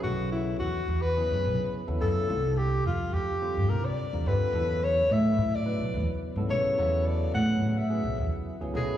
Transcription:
<<
  \new Staff \with { instrumentName = "Alto saxophone" } { \time 4/4 \key b \dorian \tempo 4 = 107 fis'8 e'8 fis'8. b'4. r16 a'8~ | a'8 g'8 f'8 g'4 bes'16 d''8. b'8~ | b'8 cis''8 e''8. d''4 r8. cis''8~ | cis''8 d''8 fis''8~ fis''32 fis''32 e''4 r8. gis'8 | }
  \new Staff \with { instrumentName = "Tine electric piano" } { \time 4/4 \key b \dorian <cis fis b e' a'>4~ <cis fis b e' a'>16 r8. <cis fis b e' gis'>4~ <cis fis b e' gis'>16 <cis fis b e' a'>16 <cis fis b e' gis'>8 | <d g c' f' a'>4.~ <d g c' f' a'>16 r16 <d g c' f' c''>4~ <d g c' f' c''>16 <d g c' f' bes'>16 <d g c' f' a'>8 | <cis fis b e' a'>4.~ <cis fis b e' a'>16 r16 <cis fis b e' b'>4~ <cis fis b e' b'>16 <cis fis b e' a'>16 <cis fis b e' a'>8 | <cis fis b e' a'>4.~ <cis fis b e' a'>16 r16 <cis fis b e' gis'>4~ <cis fis b e' gis'>16 <cis fis b e' gis'>16 <cis fis b e' a'>8 | }
  \new Staff \with { instrumentName = "Upright bass" } { \clef bass \time 4/4 \key b \dorian b,,4 e,8 e,8. fis,16 b,,16 r8 dis,16 fis,16 r16 | c,4 f,8 f,8. g,16 c,16 r8 e,16 g,16 r16 | e,4 a,8 a,8. b,,16 e,16 r8 gis,16 b,,16 r16 | e,4 a,8 a,8. b,,16 e,16 r8 cis,16 b,,16 r16 | }
>>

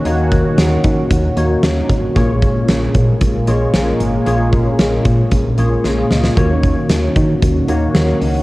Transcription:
<<
  \new Staff \with { instrumentName = "Tine electric piano" } { \time 4/4 \key ees \minor \tempo 4 = 114 << { r1 | r1 | r2. <f' des''>16 <aes' f''>16 ees''16 <f' des''>16~ | <f' des''>16 r2. r8. | } \\ { <ees bes ees' ges' des''>4. r4 <bes ees' ges' des''>4 r8 | <bes, bes f' aes' des''>4. r4 <bes f' aes' des''>4 r8 | <bes, bes f' aes' des''>4. r4 <bes f' aes' des''>4 r8 | <ees bes ees' ges' des''>4. r4 <bes ees' ges' des''>4 r8 | } >> }
  \new Staff \with { instrumentName = "Analog synth pad" } { \time 4/4 \key ees \minor <ees des' ges'>1 | <aes bes des'>1~ | <aes bes des'>1 | <ees ges'>1 | }
  \new Staff \with { instrumentName = "FM bass" } { \clef bass \time 4/4 \key ees \minor ees,4 ees,8 ees8 ees,8 ees,8 ees,8 aes,,8 | bes,,4 bes,,8 bes,8 bes,,8 bes,,8 bes,,8 aes,,8 | bes,,4 bes,,8 bes,8 bes,,8 bes,,8 bes,,8 des,8 | ees,4 ees,8 ees8 ees,8 ees,8 ees,8 des,8 | }
  \new DrumStaff \with { instrumentName = "Drums" } \drummode { \time 4/4 hh8 <hh bd>8 <hh sn>8 <hh bd>8 <hh bd>8 hh8 <hh sn>8 <hh bd>8 | <hh bd>8 <hh bd>8 <hh sn>8 <hh bd>8 <hh bd>8 hh8 <hh sn>8 hh8 | hh8 <hh bd>8 <hh sn>8 <hh bd>8 <hh bd>8 hh8 sn8 sn16 sn16 | <hh bd>8 <hh bd>8 <hh sn>8 <hh bd>8 <hh bd>8 hh8 <hh sn>8 hho8 | }
>>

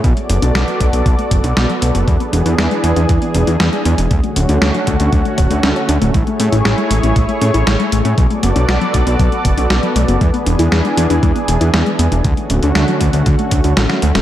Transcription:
<<
  \new Staff \with { instrumentName = "Analog synth pad" } { \time 4/4 \key b \dorian \tempo 4 = 118 <b fis' a' d''>1 | <e d' gis'>1 | <d a cis' fis'>1 | <e' gis' cis''>1 |
<b fis' a' d''>1 | <e d' gis'>1 | <d a cis' fis'>1 | }
  \new Staff \with { instrumentName = "Synth arpeggio sound" } { \time 4/4 \key b \dorian fis16 a16 b16 d'16 fis'16 fis16 a16 b16 fis16 a16 b16 d'16 fis'16 fis16 a16 b16 | gis16 b16 d'16 e'16 gis'16 gis16 b16 d'16 gis16 b16 d'16 e'16 gis'16 gis16 b16 d'16 | fis16 a16 cis'16 d'16 fis'16 fis16 a16 cis'16 fis16 a16 cis''16 a16 cis'16 cis''16 d'16 a16 | gis16 a16 cis'16 e'16 gis'16 gis16 a16 cis'16 gis16 a16 cis'16 e'16 gis'16 gis16 a16 cis'16 |
fis16 a16 b16 d'16 fis'16 fis16 a16 b16 fis16 a16 b16 d'16 fis'16 fis16 a16 b16 | gis16 b16 d'16 e'16 gis'16 gis16 b16 d'16 gis16 b16 d'16 e'16 gis'16 gis16 b16 d'16 | fis16 a16 cis'16 d'16 fis'16 fis16 a16 cis'16 fis16 a16 cis'16 d'16 fis'16 fis16 a16 cis'16 | }
  \new Staff \with { instrumentName = "Analog synth bass" } { \clef bass \time 4/4 \key b \dorian b,,16 r16 fis,,16 b,,16 b,,16 r16 b,,16 b,,16 b,,16 r16 fis,,16 b,,16 b,,16 r16 b,,16 fis,,16 | e,16 r16 e,,16 e,16 e,16 r16 e,16 e,16 e,16 r16 e,,16 e,16 e,16 r16 e,16 e,,16 | d,16 r16 d,,16 d,16 d,16 r16 d,16 d,16 d,16 r16 d,,16 d,16 d,16 r16 d,16 d,,16 | a,,16 r16 a,16 a,,16 a,,16 r16 a,,16 a,,16 a,,16 r16 a,16 a,,16 a,,16 r16 a,,16 a,16 |
b,,16 r16 fis,,16 b,,16 b,,16 r16 b,,16 b,,16 b,,16 r16 fis,,16 b,,16 b,,16 r16 b,,16 fis,,16 | e,16 r16 e,,16 e,16 e,16 r16 e,16 e,16 e,16 r16 e,,16 e,16 e,16 r16 e,16 e,,16 | d,16 r16 d,,16 d,16 d,16 r16 d,16 d,16 d,16 r16 d,16 d,16 a,,16 r16 d,16 d,,16 | }
  \new DrumStaff \with { instrumentName = "Drums" } \drummode { \time 4/4 <hh bd>16 hh16 hh16 hh16 <hh sn>16 hh16 <hh bd>16 hh16 <hh bd>16 hh16 <hh bd>16 hh16 <hh sn>16 hh16 hh16 hh16 | <hh bd>16 hh16 hh16 hh16 <hh sn>16 hh16 hh16 hh16 <hh bd>16 hh16 hh16 hh16 <hh sn>16 hh16 hh16 hh16 | <hh bd>16 hh16 hh16 hh16 <hh sn>16 hh16 <hh bd>16 hh16 <hh bd>16 hh16 <hh bd>16 hh16 <hh sn>16 hh16 hh16 hh16 | <hh bd>16 hh16 hh16 hh16 <hh sn>16 hh16 hh16 hh16 <hh bd>16 hh16 hh16 hh16 <hh sn>16 hh16 hh16 hh16 |
<hh bd>16 hh16 hh16 hh16 <hh sn>16 hh16 <hh bd>16 hh16 <hh bd>16 hh16 <hh bd>16 hh16 <hh sn>16 hh16 hh16 hh16 | <hh bd>16 hh16 hh16 hh16 <hh sn>16 hh16 hh16 hh16 <hh bd>16 hh16 hh16 hh16 <hh sn>16 hh16 hh16 hh16 | <hh bd>16 hh16 hh16 hh16 <hh sn>16 hh16 <hh bd>16 hh16 <hh bd>16 hh16 <hh bd>16 hh16 <hh sn>16 <hh sn>16 hh16 <hh sn>16 | }
>>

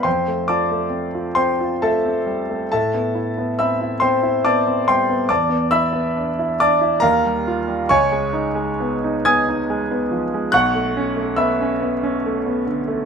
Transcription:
<<
  \new Staff \with { instrumentName = "Grand piano" } { \time 3/4 \key f \lydian \tempo 4 = 69 <c'' g'' c'''>8 <d'' a'' d'''>4 <c'' g'' c'''>8 <a' e'' a''>4 | <a' e'' a''>4 <e'' b'' e'''>8 <c'' g'' c'''>8 <d'' a'' d'''>8 <c'' g'' c'''>8 | <d'' a'' d'''>8 <e'' b'' e'''>4 <d'' a'' d'''>8 <bes' f'' bes''>4 | \key cis \phrygian <cis'' gis'' cis'''>4. <gis'' dis''' gis'''>4. |
<fis'' cis''' fis'''>4 <e'' b'' e'''>4. r8 | }
  \new Staff \with { instrumentName = "Grand piano" } { \time 3/4 \key f \lydian f,16 a16 f'16 a16 c'16 f'16 c'16 f'16 a16 c'16 g16 a16 | a,16 b16 e'16 b16 c'16 e'16 c'16 e'16 b16 c'16 g16 b16 | e,16 b16 e'16 b16 d'16 e'16 d'16 e'16 ees,16 g16 f'16 g16 | \key cis \phrygian cis,16 gis16 dis'16 gis16 b16 dis'16 b16 dis'16 gis16 b16 eis16 gis16 |
b,,16 a16 cis'16 a16 b16 cis'16 b16 cis'16 a16 b16 d16 a16 | }
>>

